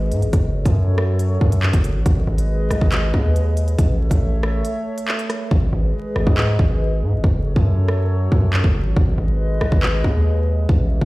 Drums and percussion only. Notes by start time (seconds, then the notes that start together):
0.12 closed hi-hat
0.22 closed hi-hat
0.33 kick, closed hi-hat
0.66 kick, closed hi-hat
0.98 cross-stick
1.19 closed hi-hat
1.41 kick
1.52 closed hi-hat
1.63 clap
1.73 kick, closed hi-hat
1.84 closed hi-hat
2.06 kick, closed hi-hat
2.38 closed hi-hat
2.71 cross-stick, closed hi-hat
2.81 kick
2.92 clap, closed hi-hat
3.14 kick
3.36 closed hi-hat
3.57 closed hi-hat
3.68 closed hi-hat
3.79 kick, closed hi-hat
4.11 kick, closed hi-hat
4.43 cross-stick
4.65 closed hi-hat
4.98 closed hi-hat
5.08 clap
5.19 closed hi-hat
5.30 cross-stick, closed hi-hat
5.51 kick
6.16 cross-stick
6.27 kick
6.38 clap
6.59 kick
7.24 kick
7.56 kick
7.88 cross-stick
8.32 kick
8.53 clap
8.64 kick
8.96 kick
9.61 cross-stick
9.72 kick
9.83 clap
10.04 kick
10.69 kick
11.01 kick